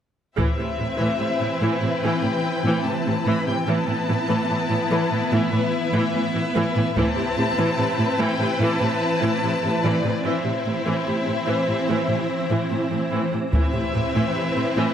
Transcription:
0.37 cello section A2, viola section E3 C4, synth drone E3 C4 E4 B4, violin section E4 B4 E5, taiko
0.58 cello section A2, viola section C3
0.78 cello section A2, viola section C3
0.99 cello section A2, viola section E3
1.20 cello section A2, viola section C3
1.40 cello section A2, viola section C3
1.61 cello section A2, viola section E3
1.82 cello section A2, viola section C3
2.02 cello section A2, viola section E3, violin section G5
2.23 cello section A2, viola section C3
2.64 cello section A2, viola section E3
2.85 cello section A2, viola section C3, violin section A5
3.06 cello section A2, viola section C3
3.26 cello section A2, viola section E3, violin section B5
3.46 cello section A2, viola section C3, violin section G5
3.67 cello section A2, viola section E3 B3, synth drone E3 B3 E4 B4, violin section E4 B4 A5
3.87 cello section A2, viola section E3
4.08 cello section A2, viola section E3
4.28 cello section A2, viola section E3
4.49 cello section A2, viola section E3
4.70 cello section A2, viola section E3
4.91 cello section A2, viola section E3
5.11 cello section A2, viola section E3
5.32 cello section A2, viola section E3, violin section E5
5.52 cello section A2, viola section E3
5.93 cello section A2, viola section E3
6.14 cello section A2, viola section E3
6.34 cello section A2, viola section E3
6.55 cello section A2, viola section E3
6.75 cello section A2, viola section E3
6.96 cello section A2, synth drone E3 C4 E4 B4, viola section E3 C4, violin section E4 B4 A5, taiko
7.17 cello section A2, viola section C3
7.37 cello section A2, viola section C3
7.57 cello section A2, viola section E3
7.78 cello section A2, viola section C3
7.98 cello section A2, viola section C3
8.19 cello section A2, viola section E3, violin section G5
8.39 cello section A2, viola section C3
8.60 cello section A2, viola section E3, violin section A5
8.80 cello section A2, viola section C3
9.22 cello section A2, viola section E3
9.43 cello section A2, viola section C3
9.63 cello section A2, viola section C3
9.84 cello section A2, viola section E3, violin section D5
10.04 cello section A2, viola section C3
10.24 cello section A2, viola section E3 C4, synth drone E3 C4 E4 C5, violin section E4 C5 E5
10.45 cello section A2, viola section C3
10.66 cello section A2, viola section C3
10.86 cello section A2, viola section E3
11.07 cello section A2, viola section C3
11.27 cello section A2, viola section C3
11.47 cello section A2, viola section E3
11.68 cello section A2, viola section C3
11.89 cello section A2, viola section E3
12.09 cello section A2, viola section C3
12.50 cello section A2, viola section E3
12.71 cello section A2, viola section C3
12.91 cello section A2, viola section C3
13.12 cello section A2, viola section E3
13.32 cello section A2, viola section C3
13.52 cello section A2, viola section E3 C4, synth drone E3 C4 E4 B4, violin section E4 B4 E5, taiko
13.73 cello section A2, viola section C3
13.94 cello section A2, viola section C3
14.14 cello section A2, viola section E3
14.35 cello section A2, viola section C3
14.56 cello section A2, viola section C3
14.76 cello section A2, viola section E3

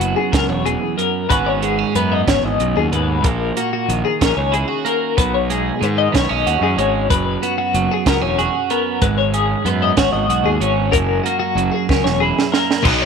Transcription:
Already playing: clean electric guitar F#2 B3 C#4 E4 F#4
0.00 fingered electric bass F#1, clean electric guitar F#3, closed hi-hat
0.16 clean electric guitar G#4
0.32 fingered electric bass C#2, clean electric guitar A#4, kick, snare, closed hi-hat
0.49 fingered electric bass E1, clean electric guitar C#5
0.66 clean electric guitar E2 G#4, closed hi-hat
0.98 clean electric guitar F#2 A#4, closed hi-hat
1.29 fingered electric bass G#1, clean electric guitar G#2 B3 C#4 F#4 B4, kick, closed hi-hat
1.46 clean electric guitar C#5
1.62 clean electric guitar B3 G#4, closed hi-hat
1.79 clean electric guitar C#4
1.95 fingered electric bass F#2, clean electric guitar B3 B4, closed hi-hat
2.12 clean electric guitar D#5
2.27 fingered electric bass G#1, clean electric guitar E2 C#5, kick, snare, closed hi-hat
2.43 fingered electric bass G#1, clean electric guitar D#5
2.60 fingered electric bass B1, clean electric guitar F#2, closed hi-hat
2.76 fingered electric bass D#2, clean electric guitar G#4
2.92 fingered electric bass D#2, clean electric guitar G#2 B4, closed hi-hat
3.24 fingered electric bass A#1, clean electric guitar A#2 A#4, kick, closed hi-hat
3.57 clean electric guitar A#3 F#4, closed hi-hat
3.73 clean electric guitar F#4
3.88 fingered electric bass A#1, clean electric guitar D#3, closed hi-hat
4.05 clean electric guitar G#4
4.21 fingered electric bass A#1, clean electric guitar C#4 A#4, kick, snare, closed hi-hat
4.37 fingered electric bass C#2, clean electric guitar C#5
4.52 clean electric guitar E4 G#4, closed hi-hat
4.68 clean electric guitar F#4
4.85 clean electric guitar A#3 A#4, closed hi-hat
5.17 fingered electric bass B1, clean electric guitar B2 B4, kick, closed hi-hat
5.34 clean electric guitar C#5
5.50 clean electric guitar G#3 G#4, closed hi-hat
5.81 fingered electric bass G#2, clean electric guitar D#3 B4, closed hi-hat
5.98 clean electric guitar D#5
6.12 fingered electric bass B1, clean electric guitar B3 C#5, kick, snare, closed hi-hat
6.29 fingered electric bass B1, clean electric guitar C#4 D#5
6.46 fingered electric bass D#2, clean electric guitar F#4, closed hi-hat
6.61 fingered electric bass F#2, clean electric guitar G#4
6.76 fingered electric bass G#1, clean electric guitar G#3 C#5, closed hi-hat
7.10 fingered electric bass F#1, clean electric guitar F#2 B4, kick, closed hi-hat
7.42 clean electric guitar B3 F#4, closed hi-hat
7.58 clean electric guitar F#4
7.74 fingered electric bass F#1, clean electric guitar F#3, closed hi-hat
7.91 clean electric guitar G#4
8.06 fingered electric bass C#2, clean electric guitar B3 A#4, kick, snare, closed hi-hat
8.22 fingered electric bass E1, clean electric guitar C#4 C#5
8.39 clean electric guitar F#4 G#4, closed hi-hat
8.70 clean electric guitar B3 A#4, closed hi-hat
9.02 fingered electric bass G#1, clean electric guitar G#2 B4, kick, closed hi-hat
9.18 clean electric guitar C#5
9.34 clean electric guitar C#4 G#4, closed hi-hat
9.65 fingered electric bass F#2, clean electric guitar B3 B4, closed hi-hat
9.82 clean electric guitar D#5
9.97 fingered electric bass G#1, clean electric guitar F#4 C#5, kick, snare, closed hi-hat
10.13 fingered electric bass G#1, clean electric guitar D#5
10.28 fingered electric bass B1, clean electric guitar F#4, closed hi-hat
10.44 fingered electric bass D#2, clean electric guitar G#4
10.61 fingered electric bass G#1, clean electric guitar C#4 C#5, closed hi-hat
10.92 fingered electric bass F#1, clean electric guitar F#2 A#4, kick, closed hi-hat
11.23 clean electric guitar A#3 F#4, closed hi-hat
11.40 clean electric guitar F#4
11.55 fingered electric bass F#1, clean electric guitar F#3, closed hi-hat
11.72 clean electric guitar G#4
11.89 fingered electric bass C#2, clean electric guitar C#4 A#4, kick, snare
12.04 fingered electric bass E1, clean electric guitar C#5, snare
12.20 clean electric guitar E4 G#4
12.39 snare
12.52 clean electric guitar A#3 A#4, snare
12.71 snare
12.83 fingered electric bass B1, overdriven electric guitar B2 F#3 B3 D#4, clean electric guitar B4, kick, crash
13.02 clean electric guitar C#5

